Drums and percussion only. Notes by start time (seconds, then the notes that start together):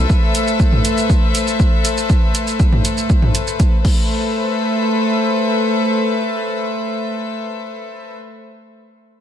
0.10 kick, shaker
0.35 closed hi-hat, shaker
0.47 shaker
0.60 kick, shaker
0.72 mid tom
0.85 closed hi-hat, shaker
0.97 shaker
1.10 kick, shaker
1.35 closed hi-hat, shaker
1.47 shaker
1.60 kick, shaker
1.85 closed hi-hat, shaker
1.97 shaker
2.10 kick, shaker
2.35 closed hi-hat, shaker
2.47 shaker
2.60 kick, shaker
2.72 mid tom
2.85 closed hi-hat, shaker
2.97 shaker
3.10 kick, shaker
3.22 mid tom
3.35 closed hi-hat, shaker
3.47 shaker
3.60 kick, closed hi-hat, shaker
3.85 kick, crash